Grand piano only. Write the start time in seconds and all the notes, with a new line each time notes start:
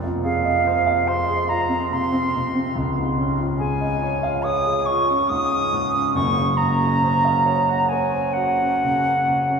Already playing: F1 F2 C3 C4
0.03 F4
0.24 G#4
0.45 D#5
0.67 C5
0.86 F5
1.08 C5
1.29 G#4
1.50 F4
1.68 C4
1.91 C3
2.12 C4
2.34 C3
2.54 C4
2.75 C#2
2.98 G#2
3.18 C#4
3.39 F4
3.60 G#4
3.80 D#5
4.03 C#5
4.23 F5
4.44 C#5
4.65 G#4
4.87 F4
5.10 C#4
5.30 G#2
5.52 C#4
5.72 G#2
5.93 C#4
6.15 F#1 F#2
6.36 C#3
6.58 C#4
6.81 F#4
7.03 C5
7.25 F5
7.46 C#5
7.69 F#5
7.92 C#5
8.13 C5
8.36 F#4
8.59 C#4
8.83 C#3
9.05 C#4
9.27 C#3
9.50 C#4